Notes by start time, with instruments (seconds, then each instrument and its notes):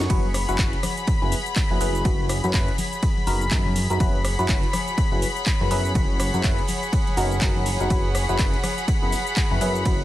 Already playing: string section G#4 C#5 F#5, analog synth pad C#6
0.00 tambourine, shaker
0.09 analog synth bass F#1, fm electric piano F#3 C#4 E4 F#4 B4, analog synth pad B5, kick, closed hi-hat, ride, tambourine, high conga, shaker
0.34 cross-stick, open hi-hat, tambourine, shaker
0.44 string section B5
0.49 analog synth bass F#1, fm electric piano F#3 C#4 E4 F#4 B4, closed hi-hat, tambourine, high conga, shaker
0.58 analog synth bass F#1, fm electric piano E4 B4, kick, clap, closed hi-hat, ride, shaker
0.73 closed hi-hat, tambourine
0.83 cross-stick, open hi-hat, tambourine, high conga, shaker
0.97 closed hi-hat, tambourine, shaker
1.07 kick, closed hi-hat, ride, tambourine, shaker
1.22 analog synth bass F#1, fm electric piano F#3 B3 E4 G#4 B4, tambourine, high conga
1.32 open hi-hat, tambourine, shaker
1.46 closed hi-hat, tambourine, shaker
1.56 kick, clap, closed hi-hat, ride, tambourine, shaker
1.71 analog synth bass F#1, fm electric piano F#3 B3 E4 G#4 B4, tambourine, high conga
1.80 analog synth bass F#1, fm electric piano F#3 B3 E4 G#4 B4, open hi-hat, tambourine, shaker
1.95 closed hi-hat, tambourine, shaker
2.05 analog synth bass F#1, fm electric piano F#3 E4 F#4, kick, closed hi-hat, ride, tambourine, high conga, shaker
2.29 cross-stick, open hi-hat, tambourine, shaker
2.44 analog synth bass F#2, fm electric piano F#3 C#4 E4 F#4 B4, closed hi-hat, tambourine, high conga, shaker
2.54 analog synth bass F#1, fm electric piano C#4 E4 F#4 B4, kick, clap, closed hi-hat, ride, shaker
2.68 closed hi-hat, tambourine
2.78 string section G#4, open hi-hat, tambourine, high conga, shaker
2.93 closed hi-hat, tambourine, shaker
3.02 kick, closed hi-hat, ride, tambourine, shaker
3.17 tambourine, high conga
3.27 analog synth bass F#1, fm electric piano F#3 B3 D#4 F#4 A#4, open hi-hat, tambourine, shaker
3.41 closed hi-hat, tambourine, shaker
3.51 analog synth bass F#2, fm electric piano F#3 B3 D#4 F#4 A#4, kick, clap, closed hi-hat, ride, tambourine, shaker
3.66 tambourine, high conga
3.76 open hi-hat, tambourine, shaker
3.90 analog synth bass F#2, fm electric piano F#3 B3 D#4 F#4 A#4, closed hi-hat, tambourine, shaker
4.00 analog synth bass F#1, fm electric piano F#3 C#4 E4 F#4 B4, kick, closed hi-hat, ride, tambourine, high conga, shaker
4.16 string section F#5
4.24 cross-stick, open hi-hat, tambourine, shaker
4.35 string section C#5 B5
4.39 analog synth bass F#2, fm electric piano F#3 C#4 E4 F#4 B4, closed hi-hat, tambourine, high conga, shaker
4.49 analog synth bass F#1, fm electric piano C#4 F#4 B4, kick, clap, closed hi-hat, ride, tambourine, shaker
4.62 closed hi-hat, tambourine
4.73 cross-stick, open hi-hat, tambourine, high conga, shaker
4.87 closed hi-hat, tambourine, shaker
4.98 kick, closed hi-hat, ride, tambourine, shaker
5.11 analog synth bass F#1, fm electric piano F#3 B3 E4 G#4 B4, tambourine, high conga
5.22 open hi-hat, tambourine, shaker
5.36 closed hi-hat, tambourine, shaker
5.46 kick, clap, closed hi-hat, ride, shaker
5.61 analog synth bass F#2, fm electric piano F#3 B3 E4 G#4 B4, tambourine, high conga
5.71 analog synth bass F#2, fm electric piano F#3 B3 E4 G#4 B4, open hi-hat, tambourine, shaker
5.85 closed hi-hat, tambourine, shaker
5.94 analog synth bass F#1, fm electric piano F#3 F#4, kick, closed hi-hat, ride, tambourine, high conga, shaker
6.20 cross-stick, open hi-hat, tambourine, shaker
6.34 analog synth bass F#2, fm electric piano F#3 C#4 E4 F#4 B4, closed hi-hat, tambourine, high conga, shaker
6.43 analog synth bass F#1, fm electric piano C#4 E4 F#4 B4, kick, clap, closed hi-hat, ride, tambourine, shaker
6.58 closed hi-hat, tambourine
6.67 open hi-hat, tambourine, high conga, shaker
6.83 closed hi-hat, tambourine, shaker
6.93 kick, closed hi-hat, ride, tambourine, shaker
7.07 closed hi-hat, tambourine, high conga
7.17 analog synth bass F#1, fm electric piano F#3 B3 D#4 F#4 A#4, open hi-hat, tambourine, shaker
7.32 closed hi-hat, tambourine, shaker
7.41 analog synth bass F#1, fm electric piano F#3 B3 D#4 F#4 A#4, kick, clap, closed hi-hat, ride, tambourine, shaker
7.56 tambourine, high conga
7.66 open hi-hat, tambourine, shaker
7.80 analog synth bass F#1, fm electric piano F#3 B3 D#4 F#4 A#4, closed hi-hat, tambourine, shaker
7.90 analog synth bass F#1, fm electric piano F#3 C#4 E4 F#4 B4, analog synth pad B5, kick, closed hi-hat, ride, tambourine, high conga, shaker
8.15 cross-stick, open hi-hat, tambourine, shaker
8.25 string section B5
8.29 analog synth bass F#1, fm electric piano F#3 C#4 E4 F#4 B4, closed hi-hat, tambourine, high conga, shaker
8.39 analog synth bass F#1, fm electric piano B4, kick, clap, closed hi-hat, ride, tambourine, shaker
8.54 closed hi-hat, tambourine
8.64 cross-stick, open hi-hat, tambourine, high conga, shaker
8.78 closed hi-hat, tambourine, shaker
8.88 kick, closed hi-hat, ride, tambourine, shaker
9.02 analog synth bass F#1, fm electric piano F#3 B3 E4 G#4 B4, tambourine, high conga
9.12 open hi-hat, tambourine, shaker
9.26 closed hi-hat, tambourine, shaker
9.36 kick, clap, closed hi-hat, ride, tambourine, shaker
9.51 analog synth bass F#1, fm electric piano F#3 B3 E4 G#4 B4, tambourine, high conga
9.61 analog synth bass F#2, fm electric piano F#3 B3 E4 G#4 B4, open hi-hat, tambourine, shaker
9.75 closed hi-hat, tambourine, shaker
9.85 analog synth bass F#1, fm electric piano F#3 C#4 E4 F#4 B4, kick, closed hi-hat, ride, tambourine, high conga, shaker